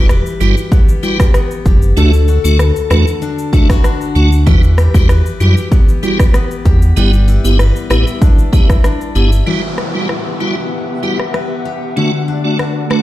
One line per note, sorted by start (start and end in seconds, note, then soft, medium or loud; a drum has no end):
0.00 0.22 E1 loud
0.00 1.96 E3 medium
0.00 0.47 G3 medium
0.00 0.39 G4 medium
0.09 1.97 B4 medium
0.09 cross-stick medium
0.09 shaker medium
0.26 shaker medium
0.40 0.55 G1 medium
0.40 0.55 G3 medium
0.40 0.56 E4 medium
0.40 0.56 F#4 medium
0.40 1.02 G4 medium
0.40 shaker medium
0.57 shaker medium
0.72 1.33 B3 medium
0.72 kick loud
0.72 shaker medium
0.89 shaker medium
1.03 1.18 G3 medium
1.03 1.18 E4 medium
1.03 1.18 F#4 medium
1.03 1.64 G4 medium
1.03 shaker medium
1.20 kick medium
1.20 cross-stick medium
1.20 shaker medium
1.34 2.03 B3 medium
1.34 cross-stick medium
1.34 shaker medium
1.51 shaker soft
1.65 1.93 F#1 medium
1.65 2.03 G4 medium
1.65 kick medium
1.65 shaker medium
1.82 shaker medium
1.97 2.39 D2 loud
1.97 4.46 D3 medium
1.97 2.12 A3 loud
1.97 2.12 D4 medium
1.97 2.12 F#4 loud
1.97 2.58 A4 medium
1.97 shaker medium
2.13 shaker medium
2.28 2.90 F#4 medium
2.28 shaker medium
2.44 2.72 D2 loud
2.44 2.58 A3 medium
2.44 2.58 D4 medium
2.44 2.58 F#4 medium
2.44 shaker medium
2.59 4.47 A4 medium
2.59 cross-stick medium
2.59 shaker medium
2.76 shaker medium
2.90 3.05 E2 medium
2.90 3.05 A3 medium
2.90 3.05 D4 medium
2.90 3.53 F#4 medium
2.90 3.06 F#4 medium
2.90 cross-stick loud
2.90 shaker medium
3.07 shaker medium
3.22 3.83 D4 medium
3.22 shaker medium
3.39 shaker medium
3.53 3.68 A3 medium
3.53 3.68 D4 medium
3.53 3.70 E4 medium
3.53 3.68 F#4 medium
3.53 kick medium
3.53 shaker medium
3.70 4.14 F#4 medium
3.70 kick medium
3.70 cross-stick medium
3.70 shaker medium
3.84 4.53 D4 medium
3.84 cross-stick medium
3.84 shaker medium
4.01 shaker soft
4.15 4.48 D2 medium
4.15 4.30 A3 medium
4.15 4.30 D4 medium
4.15 4.77 F#4 medium
4.15 4.31 F#4 medium
4.15 shaker medium
4.32 shaker medium
4.47 4.89 E2 loud
4.47 7.97 E3 medium
4.47 4.62 G3 medium
4.47 4.62 E4 medium
4.47 4.62 F#4 loud
4.47 5.09 B4 medium
4.47 kick loud
4.47 shaker medium
4.63 shaker soft
4.78 5.40 G4 medium
4.78 cross-stick medium
4.78 shaker medium
4.94 5.22 E2 loud
4.94 5.08 G3 medium
4.94 5.08 E4 medium
4.94 5.08 F#4 medium
4.94 kick medium
4.94 shaker medium
5.09 6.97 B4 medium
5.09 cross-stick medium
5.09 shaker medium
5.26 shaker medium
5.40 5.55 F#2 medium
5.40 5.55 G3 medium
5.40 5.55 E4 medium
5.40 5.56 F#4 medium
5.40 6.02 G4 medium
5.40 shaker medium
5.57 shaker medium
5.72 6.34 B3 medium
5.72 kick loud
5.72 shaker medium
5.89 shaker medium
6.03 6.18 G3 medium
6.03 6.18 E4 medium
6.03 6.18 F#4 medium
6.03 6.65 G4 medium
6.03 shaker medium
6.19 kick medium
6.19 cross-stick medium
6.19 shaker medium
6.34 8.21 B3 medium
6.34 cross-stick medium
6.34 shaker medium
6.51 shaker soft
6.65 6.93 E2 medium
6.65 7.27 G4 medium
6.65 kick medium
6.65 shaker medium
6.82 shaker medium
6.96 7.39 G1 loud
6.96 10.47 G3 medium
6.96 7.12 B3 loud
6.96 7.12 E4 medium
6.96 7.12 G4 loud
6.96 7.59 B4 medium
6.96 shaker medium
7.13 shaker medium
7.28 7.90 E4 medium
7.28 shaker medium
7.44 7.72 G1 loud
7.44 7.58 B3 medium
7.44 7.58 E4 medium
7.44 7.58 G4 medium
7.44 shaker medium
7.59 10.40 B4 medium
7.59 cross-stick medium
7.59 shaker medium
7.76 shaker medium
7.90 8.05 A1 medium
7.90 8.05 B3 medium
7.90 8.05 E4 medium
7.90 8.53 E4 medium
7.90 8.06 G4 medium
7.90 cross-stick loud
7.90 shaker medium
8.07 shaker medium
8.22 8.83 D4 medium
8.22 kick loud
8.22 shaker medium
8.38 shaker medium
8.53 8.68 B3 medium
8.53 9.15 E4 medium
8.53 8.68 E4 medium
8.53 8.68 G4 medium
8.53 kick medium
8.53 shaker medium
8.70 kick medium
8.70 cross-stick medium
8.70 shaker medium
8.84 9.53 D4 medium
8.84 cross-stick medium
8.84 shaker medium
9.01 shaker soft
9.15 9.43 G1 medium
9.15 9.30 B3 medium
9.15 11.03 E4 medium
9.15 9.30 E4 medium
9.15 9.31 G4 medium
9.15 shaker medium
9.32 shaker medium
9.46 11.96 E3 medium
9.46 9.62 G3 medium
9.46 11.94 B3 medium
9.46 9.62 E4 medium
9.46 9.62 F#4 loud
9.46 11.94 G4 medium
9.46 11.94 E5 medium
9.46 13.02 F#5 medium
9.46 downlifter medium
9.78 12.03 B3 medium
9.78 cross-stick medium
9.94 10.08 G3 medium
9.94 10.08 E4 medium
9.94 10.08 F#4 medium
10.09 cross-stick medium
10.40 10.55 G3 medium
10.40 10.55 E4 medium
10.40 10.56 F#4 medium
10.40 11.33 B4 medium
11.03 11.18 G3 medium
11.03 11.18 E4 medium
11.03 11.18 F#4 medium
11.03 11.64 G4 medium
11.20 cross-stick medium
11.34 12.03 B4 medium
11.34 cross-stick medium
11.65 12.03 G4 medium
11.96 13.02 D3 medium
11.96 12.12 A3 medium
11.96 13.02 A3 medium
11.96 13.02 D4 medium
11.96 12.12 D4 medium
11.96 12.12 F#4 loud
11.96 13.02 D5 medium
12.28 13.02 D4 medium
12.44 12.58 A3 medium
12.44 12.58 D4 medium
12.44 12.58 F#4 medium
12.59 13.02 F#4 medium
12.59 cross-stick medium
12.90 13.02 A3 medium
12.90 13.02 D4 medium
12.90 13.02 F#4 medium
12.90 13.02 A4 medium
12.90 cross-stick loud